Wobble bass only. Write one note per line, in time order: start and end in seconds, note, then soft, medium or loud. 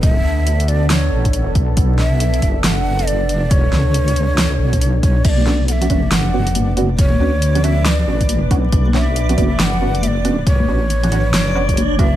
0.00 0.23 F#1 loud
0.25 1.10 D2 loud
1.12 1.54 A1 loud
1.55 1.76 B1 loud
1.77 2.41 B1 loud
2.42 3.33 F#1 loud
3.33 3.59 F1 loud
3.59 3.71 E1 loud
3.73 4.58 C#2 loud
4.59 5.02 B1 loud
5.03 5.23 B1 medium
5.25 5.89 B1 loud
5.90 6.81 F#1 loud
6.81 7.07 F1 loud
7.07 7.19 E1 loud
7.20 8.06 D2 loud
8.07 8.49 A1 loud
8.51 8.71 B1 loud
8.72 9.36 B1 loud
9.38 10.67 F#1 loud
10.68 11.32 A1 loud
11.33 12.16 F#1 loud